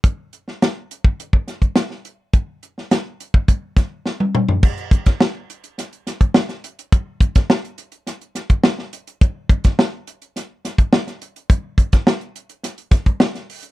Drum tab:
CC |----------------|----------------|x---------------|----------------|
HH |x-x-x-x-x-xxx-x-|x-x-x-x-x-x-----|-xxx--xxxxxx-xxx|x-xx-xxxxxxx--xx|
SD |---oo-----o-oo--|---oo-----o-o---|---oo---o-o-oo--|---oo---o-o-oo--|
T1 |----------------|-------------o--|----------------|----------------|
T2 |----------------|--------------o-|----------------|----------------|
FT |----------------|---------------o|----------------|----------------|
BD |o------o-o-o----|o------oo-o-----|o-oo-------o----|o-oo-------o----|

CC |----------------|----------------|
HH |x-xx--xxx-xx-xxx|x-xx-xxxxxxx-xox|
SD |---oo---o-o-oo--|---oo---o-o-oo--|
T1 |----------------|----------------|
T2 |----------------|----------------|
FT |----------------|----------------|
BD |o-oo-------o----|o-oo------oo----|